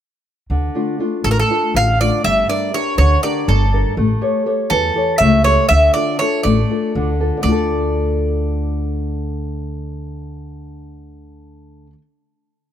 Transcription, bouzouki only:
1.24 1.31 A4 medium
1.31 1.38 A#4 medium
1.39 1.76 A4 medium
1.77 1.98 F5 loud
2.01 2.23 D5 medium
2.24 2.47 E5 medium
2.49 2.72 D5 medium
2.74 2.97 C#5 medium
2.98 3.21 C#5 medium
3.23 3.46 D5 medium
3.49 3.94 A4 medium
4.70 5.17 A4 medium
5.18 5.42 E5 medium
5.44 5.68 C#5 medium
5.69 5.92 E5 loud
5.94 6.19 D5 medium
6.19 6.42 C#5 medium
6.43 7.14 D5 medium
7.43 11.92 D5 medium

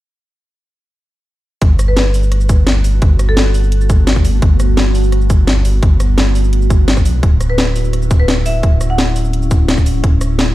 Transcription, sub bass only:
1.62 3.01 G1 loud
3.02 4.41 G1 loud
4.42 5.81 G1 loud
5.83 7.07 G1 loud
7.05 7.21 B1 medium
7.23 8.62 D1 loud
8.63 10.02 D1 loud
10.04 10.55 D1 loud

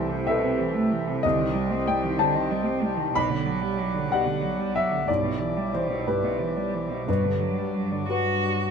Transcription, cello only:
0.00 0.11 E3 soft
0.09 0.29 C3 soft
0.27 0.45 B2 medium
0.43 0.61 C3 medium
0.59 0.76 E3 soft
0.74 0.93 A3 medium
0.91 1.08 E3 soft
1.06 1.23 C3 medium
1.24 1.40 D3 medium
1.39 1.56 D#3 medium
1.54 1.73 G3 medium
1.71 1.90 C4 medium
1.88 2.06 G3 medium
2.04 2.20 D#3 medium
2.18 2.36 D3 medium
2.35 2.52 D#3 medium
2.50 2.67 G3 soft
2.65 2.84 C4 medium
2.83 2.99 G3 soft
2.98 3.12 D#3 soft
3.13 3.31 B2 medium
3.29 3.47 D3 soft
3.46 3.62 F#3 medium
3.61 3.79 G3 medium
3.78 3.95 F#3 soft
3.93 4.11 D3 soft
4.10 4.27 B2 medium
4.25 4.43 D3 medium
4.41 4.60 F#3 soft
4.58 4.75 G3 soft
4.73 4.92 F#3 soft
4.90 5.05 D3 soft
5.06 5.25 G2 medium
5.24 5.41 B2 soft
5.40 5.58 E3 soft
5.57 5.75 G3 soft
5.73 5.91 E3 soft
5.90 6.09 B2 soft
6.07 6.25 G2 soft
6.24 6.42 B2 soft
6.41 6.58 E3 soft
6.56 6.75 G3 soft
6.74 6.92 E3 soft
6.91 7.07 B2 soft
7.08 7.25 B2 soft
7.24 7.42 D3 soft
7.40 7.60 F#3 soft
7.58 7.75 G3 soft
7.74 7.93 F#3 soft
7.91 8.08 D3 soft
8.08 8.71 F#4 medium

